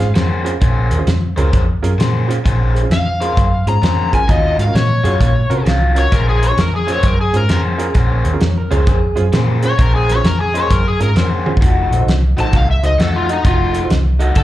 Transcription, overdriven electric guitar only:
0.15 0.50 A#3 medium
0.15 0.50 C#4 medium
0.15 0.50 G#4 medium
0.15 0.51 C5 medium
0.61 0.96 A#3 medium
0.61 0.96 C#4 medium
0.61 0.96 G#4 medium
0.61 0.96 C5 medium
1.36 1.62 A#3 medium
1.36 1.62 C#4 medium
1.36 1.62 G#4 medium
1.36 1.62 C5 medium
1.98 2.33 A#3 medium
1.98 2.34 C#4 medium
1.98 2.34 G#4 medium
1.98 2.34 C5 medium
2.44 2.79 A#3 medium
2.44 2.80 C#4 medium
2.44 2.80 G#4 medium
2.44 2.80 C5 medium
3.21 3.46 A#3 medium
3.21 3.46 C#4 medium
3.21 3.46 G#4 medium
3.21 3.45 C5 medium
3.82 4.17 A#3 medium
3.82 4.17 C#4 medium
3.82 4.17 G#4 medium
3.82 4.17 C5 medium
4.28 4.62 D#3 medium
4.28 4.63 F#3 medium
4.28 4.63 C#4 medium
4.28 4.63 F4 medium
5.04 5.29 D#3 medium
5.04 5.29 F#3 medium
5.04 5.29 C#4 medium
5.04 5.29 F4 medium
5.65 6.00 D#3 medium
5.65 6.00 F#3 medium
5.65 6.01 C#4 medium
5.65 6.01 F4 medium
6.11 6.46 A#3 medium
6.11 6.46 C#4 medium
6.11 6.46 G#4 medium
6.11 6.47 C5 medium
6.87 7.13 A#3 medium
6.87 7.12 C#4 medium
6.87 7.12 G#4 medium
6.87 7.12 C5 medium
7.49 7.84 A#3 medium
7.49 7.84 C#4 medium
7.49 7.84 G#4 medium
7.49 7.84 C5 medium
7.95 8.29 A#3 medium
7.95 8.29 C#4 medium
7.95 8.30 G#4 medium
7.95 8.30 C5 medium
8.71 8.96 A#3 medium
8.71 8.96 C#4 medium
8.71 8.96 G#4 medium
8.71 8.96 C5 medium
9.33 9.67 A#3 medium
9.33 9.68 C#4 medium
9.33 9.68 G#4 medium
9.33 9.68 C5 medium
9.78 10.13 A#3 medium
9.78 10.13 C#4 medium
9.78 10.13 G#4 medium
9.78 10.14 C5 medium
10.55 10.80 A#3 medium
10.55 10.79 C#4 medium
10.55 10.79 G#4 medium
10.55 10.79 C5 medium
11.16 11.50 A#3 medium
11.16 11.51 C#4 medium
11.16 11.51 G#4 medium
11.16 11.51 C5 medium
11.61 11.96 F3 medium
11.61 11.96 A3 medium
11.61 11.96 D#4 medium
11.61 11.97 F#4 medium
12.37 12.63 F3 medium
12.37 12.62 A3 medium
12.37 12.62 D#4 medium
12.37 12.62 F#4 medium
12.99 13.34 F3 medium
12.99 13.34 A3 medium
12.99 13.34 D#4 medium
12.99 13.34 F#4 medium
13.44 13.79 F3 medium
13.44 13.79 A3 medium
13.44 13.80 D#4 medium
13.44 13.80 F#4 medium
14.20 14.43 F3 medium
14.20 14.43 A3 medium
14.20 14.43 D#4 medium
14.20 14.43 F#4 medium

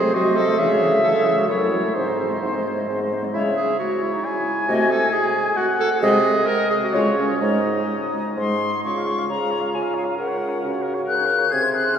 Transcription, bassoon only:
0.15 0.54 C3 medium
0.59 0.99 C#3 medium
1.04 1.44 C#3 medium
1.49 1.89 F#2 medium
1.95 2.36 G#2 medium
2.42 2.82 G#2 medium
2.88 3.29 G#2 medium
3.34 3.72 C#3 medium
4.68 5.05 C3 medium
6.03 6.40 C3 loud
6.94 7.33 C#3 medium
7.42 7.81 G#2 medium
8.37 8.77 G#2 medium
8.85 9.25 C#3 soft
9.30 9.70 C#3 soft
9.75 10.14 C#3 soft
10.19 10.59 C#3 medium
10.64 11.04 C#3 medium
11.09 11.48 C#3 medium
11.53 11.92 C3 medium

